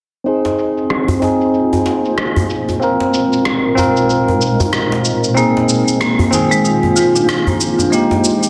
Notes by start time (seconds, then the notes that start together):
0.24 A#3 C4 D#4 F4 G#4 C5, shaker
0.45 djembe slap
0.59 shaker
0.78 shaker
0.90 cross-stick, shaker
1.08 djembe bass
1.20 C4 D#4, djembe tone, shaker
1.24 G#4
1.41 shaker
1.54 shaker
1.73 djembe tone
1.86 djembe slap, shaker
2.05 shaker
2.18 cross-stick, shaker
2.36 djembe bass
2.50 shaker
2.69 djembe tone, shaker
2.80 A#2 G#3 C4 D#4 F4 A#4, shaker
3.00 djembe slap
3.14 shaker
3.33 shaker
3.45 cross-stick, shaker
3.75 C4 F4 A#4, djembe tone, shaker
3.97 shaker
4.10 shaker
4.28 djembe tone
4.42 shaker
4.60 djembe bass, shaker
4.73 cross-stick, shaker
4.92 djembe slap
5.05 shaker
5.24 shaker
5.34 A#3 C4 D#4 F4 G#4 C5, shaker
5.57 djembe slap
5.69 shaker
5.88 shaker
6.01 A#3, cross-stick, shaker
6.19 djembe bass
6.31 D#3 C4 G#4, djembe tone, shaker
6.51 G#3, shaker
6.65 D#4, shaker
6.83 djembe tone
6.96 F4, djembe slap, shaker
7.15 D4, shaker
7.28 F4, cross-stick, shaker
7.47 A#3, djembe bass
7.61 shaker
7.78 D4, djembe tone, shaker
7.90 G#3 A#3 D#4 G4 G5, shaker
8.11 djembe slap, djembe tone
8.24 shaker
8.43 shaker